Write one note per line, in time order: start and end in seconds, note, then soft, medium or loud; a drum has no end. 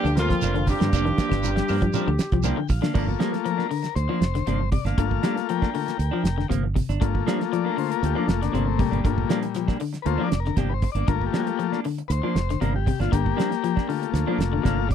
0.00 0.13 G2 medium
0.00 0.20 D3 medium
0.00 0.14 D4 loud
0.00 0.13 G4 loud
0.04 0.33 D2 medium
0.04 muted clean electric guitar stroke medium
0.04 snare soft
0.04 closed hi-hat soft
0.04 claves medium
0.15 0.63 F2 medium
0.15 0.32 G3 medium
0.15 0.64 A#3 medium
0.15 0.32 C4 medium
0.15 0.32 F4 medium
0.15 0.65 F4 loud
0.15 0.32 A#4 medium
0.15 muted clean electric guitar stroke soft
0.15 snare medium
0.15 closed hi-hat medium
0.15 shekere soft
0.30 0.45 F3 medium
0.30 kick medium
0.30 snare soft
0.30 closed hi-hat soft
0.42 0.72 F1 medium
0.42 0.55 F3 medium
0.42 0.56 A#3 medium
0.42 0.55 D4 medium
0.42 closed hi-hat medium
0.42 claves medium
0.42 shekere loud
0.54 0.70 D3 medium
0.54 muted clean electric guitar stroke soft
0.54 closed hi-hat soft
0.66 2.41 G2 medium
0.66 0.90 G3 medium
0.66 0.90 C4 medium
0.66 2.42 D4 medium
0.66 0.90 F4 medium
0.66 2.41 G4 loud
0.66 0.90 A#4 medium
0.66 muted clean electric guitar stroke soft
0.66 kick medium
0.66 open hi-hat medium
0.66 shekere soft
0.80 0.90 G2 medium
0.80 0.88 D3 medium
0.80 0.93 A#3 soft
0.80 muted clean electric guitar stroke medium
0.80 snare medium
0.80 closed hi-hat soft
0.93 1.12 F1 loud
0.93 1.06 F3 medium
0.93 1.06 A#3 medium
0.93 1.05 D4 medium
0.93 kick loud
0.93 closed hi-hat medium
0.93 claves medium
0.93 shekere medium
1.05 1.21 D#3 medium
1.05 muted clean electric guitar stroke soft
1.05 closed hi-hat soft
1.18 1.31 F3 medium
1.18 1.31 A#3 medium
1.18 kick medium
1.18 snare medium
1.18 closed hi-hat medium
1.18 shekere soft
1.29 1.60 G1 medium
1.29 1.46 D3 medium
1.29 muted clean electric guitar stroke soft
1.29 kick medium
1.29 snare medium
1.29 closed hi-hat soft
1.29 claves medium
1.43 1.51 G3 medium
1.43 1.51 C4 medium
1.43 1.52 F4 medium
1.43 1.52 A#4 medium
1.43 muted clean electric guitar stroke soft
1.43 closed hi-hat medium
1.43 shekere medium
1.56 1.72 G3 medium
1.56 snare medium
1.56 closed hi-hat soft
1.68 1.89 G2 medium
1.68 1.82 F3 medium
1.68 1.77 G3 medium
1.68 1.81 A#3 medium
1.68 1.77 C4 medium
1.68 1.81 D4 medium
1.68 1.76 F4 medium
1.68 1.77 A#4 medium
1.68 open hi-hat medium
1.68 claves medium
1.68 shekere soft
1.82 1.98 F3 medium
1.82 muted clean electric guitar stroke soft
1.82 kick medium
1.82 closed hi-hat soft
1.93 2.07 F3 medium
1.93 2.10 G3 medium
1.93 2.10 C4 medium
1.93 2.06 D4 medium
1.93 2.10 F4 medium
1.93 2.10 A#4 loud
1.93 muted clean electric guitar stroke medium
1.93 closed hi-hat medium
1.93 shekere loud
2.07 2.17 D2 medium
2.07 2.23 D3 medium
2.07 muted clean electric guitar stroke soft
2.07 claves medium
2.19 muted fingered electric bass stroke soft
2.19 muted clean electric guitar stroke soft
2.19 snare medium
2.19 closed hi-hat medium
2.19 shekere soft
2.32 2.52 C2 medium
2.32 2.49 F3 medium
2.32 kick medium
2.32 closed hi-hat soft
2.43 2.57 F3 medium
2.43 2.60 G3 medium
2.43 2.58 A#3 medium
2.43 2.60 C4 medium
2.43 2.57 D4 medium
2.43 2.60 F4 medium
2.43 2.60 A#4 medium
2.43 2.68 G5 medium
2.43 closed hi-hat medium
2.43 claves medium
2.43 shekere medium
2.57 2.73 D3 medium
2.57 muted clean electric guitar stroke soft
2.69 2.80 A#1 medium
2.69 2.93 F5 medium
2.69 muted clean electric guitar stroke soft
2.69 kick medium
2.69 open hi-hat medium
2.69 shekere soft
2.82 2.90 D3 medium
2.82 2.93 A#3 medium
2.82 2.94 D4 medium
2.82 snare medium
2.94 3.14 G1 medium
2.94 3.08 F3 medium
2.94 3.67 A3 medium
2.94 3.07 A#3 medium
2.94 3.67 A#3 soft
2.94 3.06 D4 medium
2.94 3.68 F4 medium
2.94 muted clean electric guitar stroke medium
2.94 kick loud
2.94 crash medium
3.07 muted clean electric guitar stroke soft
3.07 kick medium
3.19 3.33 F3 medium
3.19 3.36 G3 medium
3.19 3.32 A#3 medium
3.19 snare medium
3.19 closed hi-hat soft
3.33 muted clean electric guitar stroke soft
3.33 snare soft
3.33 closed hi-hat soft
3.45 3.61 F3 medium
3.45 3.95 A#4 medium
3.45 closed hi-hat medium
3.57 3.69 A#3 soft
3.57 3.69 D4 soft
3.57 snare soft
3.69 3.87 D3 medium
3.69 muted clean electric guitar stroke soft
3.69 open hi-hat medium
3.83 muted clean electric guitar stroke soft
3.83 snare soft
3.83 closed hi-hat medium
3.95 4.06 D2 loud
3.95 4.70 C5 medium
3.95 muted clean electric guitar stroke soft
3.95 closed hi-hat medium
4.09 4.25 F3 medium
4.09 4.20 F3 medium
4.09 4.20 A#3 medium
4.09 4.21 D4 medium
4.21 4.41 F1 medium
4.21 muted clean electric guitar stroke soft
4.21 snare medium
4.21 closed hi-hat soft
4.35 4.43 D3 medium
4.35 snare soft
4.35 closed hi-hat soft
4.47 4.77 G1 medium
4.47 4.63 C3 medium
4.47 4.60 F3 medium
4.47 4.59 A#3 medium
4.47 4.58 D4 medium
4.47 closed hi-hat medium
4.60 muted clean electric guitar stroke soft
4.72 4.89 C3 medium
4.72 4.85 D5 medium
4.72 muted clean electric guitar stroke soft
4.72 kick medium
4.72 open hi-hat medium
4.85 4.95 G1 medium
4.85 5.01 A#3 soft
4.85 5.00 D4 medium
4.85 5.47 F5 medium
4.85 snare soft
4.85 closed hi-hat medium
4.98 5.18 G1 medium
4.98 5.15 D3 medium
4.98 5.70 A3 medium
4.98 5.70 A#3 medium
4.98 5.71 F4 medium
4.98 kick loud
4.98 closed hi-hat medium
5.11 muted clean electric guitar stroke soft
5.11 kick medium
5.23 5.40 G3 medium
5.23 5.36 A#3 medium
5.23 5.35 D4 medium
5.23 muted clean electric guitar stroke medium
5.23 snare medium
5.23 closed hi-hat medium
5.36 muted clean electric guitar stroke medium
5.36 snare soft
5.36 closed hi-hat soft
5.49 5.66 F3 medium
5.49 6.47 A#4 medium
5.49 6.48 G5 medium
5.49 closed hi-hat medium
5.62 5.73 A#3 soft
5.62 5.73 D4 soft
5.62 kick medium
5.62 snare soft
5.73 5.91 D3 medium
5.73 5.97 A3 soft
5.73 5.97 A#3 soft
5.73 5.98 F4 medium
5.73 muted clean electric guitar stroke soft
5.73 open hi-hat medium
5.86 muted clean electric guitar stroke soft
5.86 snare soft
5.86 closed hi-hat medium
5.97 6.10 D2 loud
5.97 muted clean electric guitar stroke soft
5.97 closed hi-hat medium
6.11 6.22 F3 medium
6.11 6.29 F3 medium
6.11 6.23 D4 medium
6.24 6.44 F1 medium
6.24 muted clean electric guitar stroke soft
6.24 snare medium
6.24 closed hi-hat soft
6.38 6.46 D3 medium
6.38 snare soft
6.49 6.81 G1 medium
6.49 6.66 C3 medium
6.49 6.63 F3 medium
6.49 6.63 A#3 medium
6.49 kick medium
6.49 closed hi-hat medium
6.63 muted clean electric guitar stroke soft
6.75 6.92 C3 medium
6.75 muted clean electric guitar stroke soft
6.75 kick medium
6.75 open hi-hat medium
6.89 6.99 G1 loud
6.89 7.04 D4 medium
6.89 closed hi-hat soft
7.00 7.21 G1 medium
7.00 7.17 D3 medium
7.00 9.00 A3 medium
7.00 9.01 A#3 medium
7.00 8.28 F4 medium
7.00 kick medium
7.00 closed hi-hat medium
7.14 muted clean electric guitar stroke soft
7.14 kick medium
7.27 7.40 F3 medium
7.27 7.44 G3 medium
7.27 7.39 A#3 medium
7.27 7.38 D4 medium
7.27 snare medium
7.27 closed hi-hat soft
7.39 muted clean electric guitar stroke soft
7.39 snare soft
7.39 closed hi-hat soft
7.53 7.68 F3 medium
7.53 7.65 D5 medium
7.53 closed hi-hat medium
7.65 7.77 A#3 soft
7.65 7.77 D4 medium
7.65 7.77 A#4 medium
7.77 7.93 D3 medium
7.77 7.90 C5 medium
7.77 muted clean electric guitar stroke soft
7.77 open hi-hat medium
7.91 8.02 A#4 medium
7.91 muted clean electric guitar stroke soft
7.91 closed hi-hat medium
8.03 8.13 D2 loud
8.03 8.17 G4 medium
8.03 muted clean electric guitar stroke soft
8.03 closed hi-hat medium
8.15 8.26 F3 medium
8.15 8.32 F3 medium
8.15 8.26 A#3 medium
8.15 8.27 D4 medium
8.15 8.28 D4 medium
8.27 8.48 F1 medium
8.27 8.41 F4 medium
8.27 muted clean electric guitar stroke soft
8.27 snare medium
8.27 closed hi-hat soft
8.42 8.50 D3 medium
8.42 8.53 D4 medium
8.42 snare soft
8.42 closed hi-hat medium
8.52 8.84 G1 medium
8.52 8.70 C3 medium
8.52 8.66 F3 medium
8.52 8.65 A#3 medium
8.52 8.79 C4 medium
8.52 8.64 D4 medium
8.52 closed hi-hat medium
8.66 muted clean electric guitar stroke soft
8.79 9.77 A#2 medium
8.79 8.96 C3 medium
8.79 9.78 G3 medium
8.79 muted clean electric guitar stroke soft
8.79 kick medium
8.79 open hi-hat medium
8.91 9.02 G1 loud
8.91 9.07 A#3 soft
8.91 9.07 D4 soft
8.91 closed hi-hat medium
9.04 9.24 G1 medium
9.04 9.21 D3 medium
9.04 9.39 A3 medium
9.04 9.40 A#3 soft
9.04 9.40 F4 medium
9.04 kick loud
9.04 closed hi-hat medium
9.18 muted clean electric guitar stroke soft
9.18 kick medium
9.29 9.43 F3 medium
9.29 9.46 G3 medium
9.29 9.43 A#3 medium
9.29 9.42 D4 medium
9.29 snare medium
9.29 closed hi-hat medium
9.43 muted clean electric guitar stroke medium
9.43 closed hi-hat soft
9.55 9.72 F3 medium
9.55 snare soft
9.55 closed hi-hat medium
9.68 9.79 A#3 soft
9.68 9.79 D4 medium
9.68 kick medium
9.68 snare soft
9.80 9.97 D3 medium
9.80 muted clean electric guitar stroke soft
9.80 open hi-hat medium
9.93 muted clean electric guitar stroke soft
9.93 snare soft
9.93 closed hi-hat medium
10.02 10.16 D2 loud
10.02 10.29 A3 soft
10.02 10.29 A#3 soft
10.02 10.29 F4 medium
10.02 10.06 B4 medium
10.02 muted clean electric guitar stroke soft
10.02 closed hi-hat medium
10.07 10.23 C5 loud
10.18 10.31 F3 medium
10.18 10.37 F3 medium
10.18 10.30 A#3 medium
10.18 10.31 D4 medium
10.23 10.40 D5 medium
10.32 10.52 F1 medium
10.32 muted clean electric guitar stroke soft
10.32 snare medium
10.32 closed hi-hat medium
10.40 10.57 A#4 medium
10.45 10.54 D3 medium
10.45 snare soft
10.56 10.87 G1 medium
10.56 10.74 C3 medium
10.56 10.70 F3 medium
10.56 10.70 A#3 medium
10.56 10.69 D4 medium
10.56 10.74 G4 medium
10.56 kick medium
10.56 snare soft
10.56 closed hi-hat medium
10.69 10.73 B4 medium
10.69 muted clean electric guitar stroke soft
10.74 10.91 C5 medium
10.82 muted clean electric guitar stroke soft
10.82 kick medium
10.82 open hi-hat medium
10.92 11.05 G1 loud
10.92 11.10 D4 medium
10.92 11.08 D5 medium
10.92 closed hi-hat medium
10.96 11.11 A#3 soft
11.08 11.28 G1 medium
11.08 11.24 D3 medium
11.08 11.80 A3 medium
11.08 11.80 A#3 soft
11.08 11.81 F4 medium
11.08 11.25 A#4 medium
11.08 kick loud
11.08 closed hi-hat medium
11.21 muted clean electric guitar stroke soft
11.21 kick medium
11.26 11.42 G4 medium
11.33 11.47 F3 medium
11.33 11.50 G3 medium
11.33 11.46 A#3 medium
11.33 muted clean electric guitar stroke medium
11.33 snare medium
11.33 closed hi-hat soft
11.38 11.42 F#4 medium
11.43 11.67 G4 medium
11.43 muted clean electric guitar stroke soft
11.43 closed hi-hat soft
11.59 11.75 F3 medium
11.59 closed hi-hat medium
11.72 11.85 A#3 soft
11.72 11.84 D4 medium
11.72 snare soft
11.85 12.01 D3 medium
11.85 muted clean electric guitar stroke soft
11.85 open hi-hat medium
11.98 muted clean electric guitar stroke soft
11.98 closed hi-hat medium
12.08 12.20 D2 loud
12.08 12.11 B4 medium
12.08 12.60 C5 medium
12.08 muted clean electric guitar stroke soft
12.08 closed hi-hat medium
12.23 12.39 F3 medium
12.23 12.34 F3 medium
12.23 12.35 A#3 medium
12.23 12.35 D4 medium
12.35 12.55 F1 medium
12.35 muted clean electric guitar stroke soft
12.35 snare medium
12.35 closed hi-hat soft
12.50 12.58 D3 medium
12.50 snare soft
12.50 closed hi-hat medium
12.61 12.91 G1 medium
12.61 12.77 C3 medium
12.61 12.74 F3 medium
12.61 12.74 A#3 medium
12.61 12.73 D4 medium
12.61 12.73 A#4 medium
12.61 closed hi-hat medium
12.74 13.00 G4 medium
12.74 muted clean electric guitar stroke soft
12.86 13.03 C3 medium
12.86 muted clean electric guitar stroke soft
12.86 kick medium
12.86 open hi-hat medium
13.00 13.09 G1 loud
13.00 13.15 A#3 soft
13.00 13.14 D4 medium
13.00 13.12 F4 medium
13.00 snare soft
13.00 closed hi-hat soft
13.12 13.32 G1 loud
13.12 13.28 D3 medium
13.12 13.88 A#3 medium
13.12 14.11 G4 loud
13.12 kick loud
13.12 closed hi-hat medium
13.26 muted clean electric guitar stroke soft
13.26 kick medium
13.36 13.50 F3 medium
13.36 13.54 G3 medium
13.36 13.50 A#3 medium
13.36 13.49 D4 medium
13.36 snare medium
13.36 closed hi-hat soft
13.51 muted clean electric guitar stroke soft
13.51 snare soft
13.51 closed hi-hat soft
13.64 13.79 F3 medium
13.64 closed hi-hat medium
13.76 13.88 A#3 soft
13.76 13.88 D4 medium
13.76 kick medium
13.76 snare soft
13.87 14.05 D3 medium
13.87 14.64 A3 medium
13.87 14.65 A#3 soft
13.87 14.65 F4 medium
13.87 muted clean electric guitar stroke soft
13.87 open hi-hat medium
14.02 muted clean electric guitar stroke soft
14.02 closed hi-hat medium
14.14 14.24 D2 loud
14.14 muted clean electric guitar stroke soft
14.14 snare soft
14.14 closed hi-hat medium
14.27 14.43 F3 medium
14.27 14.38 F3 medium
14.27 14.38 A#3 medium
14.27 14.39 D4 medium
14.38 14.58 F1 medium
14.38 muted clean electric guitar stroke soft
14.38 snare medium
14.38 closed hi-hat soft
14.53 14.60 D3 medium
14.64 14.94 G1 medium
14.64 14.80 C3 medium
14.64 14.77 F3 medium
14.64 14.88 A3 soft
14.64 14.77 A#3 medium
14.64 14.88 A#3 soft
14.64 14.77 D4 medium
14.64 14.88 F4 medium
14.64 14.90 F5 medium
14.64 kick medium
14.64 snare soft
14.64 closed hi-hat medium
14.78 muted clean electric guitar stroke soft
14.89 14.95 C3 medium
14.89 muted clean electric guitar stroke soft
14.89 kick medium
14.89 open hi-hat medium